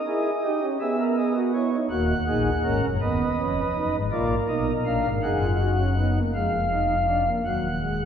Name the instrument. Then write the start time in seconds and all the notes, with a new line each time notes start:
pipe organ
Already playing: D#5
0.07 E4 G#4
0.44 D#4 G4
0.62 C#4
0.80 B3 G#4 E5
0.99 A#4
1.17 G#4 D#5
1.36 F#4
1.53 E4 C#5
1.72 D#4
1.90 D#1 D#2 A#3 F#4 F#5
2.27 A#1 A#2 D#4 G#4
2.64 G#1 G#2 C#4 A#4
2.83 F#1 F#2
3.01 D#1 D#2 B3 B4 D#5
3.38 F1 F2 C#4
3.75 F#1 F#2 D#4
3.93 G#1 G#2
4.12 A#1 A#2 F4 A#4 D5
4.48 B1 B2 D#4 D#5
4.85 A#1 A#2 D4 F5
5.04 G#1 G#2
5.23 F#1 F#2 D#4 G#4 F#5
5.41 F4
5.60 D#4 F#4
5.78 C#4
5.97 B3 D#4
6.16 A#3
6.34 F1 F2 G#3 F5
6.72 D#4
7.08 D4
7.27 A#3
7.45 D#1 D#2 F#3 F#5
7.81 G#3